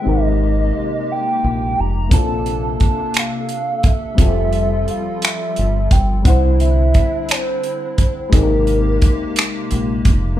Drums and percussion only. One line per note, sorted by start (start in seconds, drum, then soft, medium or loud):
2.11 kick loud
2.11 closed hi-hat medium
2.46 closed hi-hat soft
2.80 kick medium
2.80 closed hi-hat soft
3.14 finger snap loud
3.14 closed hi-hat medium
3.49 closed hi-hat medium
3.83 kick medium
3.83 closed hi-hat medium
4.18 kick loud
4.18 closed hi-hat medium
4.53 closed hi-hat soft
4.88 closed hi-hat soft
5.22 finger snap loud
5.22 closed hi-hat medium
5.56 closed hi-hat medium
5.91 kick medium
5.91 closed hi-hat medium
6.25 kick loud
6.25 closed hi-hat medium
6.60 closed hi-hat soft
6.94 kick medium
6.94 closed hi-hat soft
7.29 finger snap loud
7.29 closed hi-hat medium
7.64 closed hi-hat soft
7.98 kick medium
7.98 closed hi-hat medium
8.33 kick loud
8.33 closed hi-hat medium
8.67 closed hi-hat soft
9.02 kick medium
9.02 closed hi-hat soft
9.36 finger snap loud
9.36 closed hi-hat medium
9.71 closed hi-hat medium
10.05 kick medium
10.05 closed hi-hat medium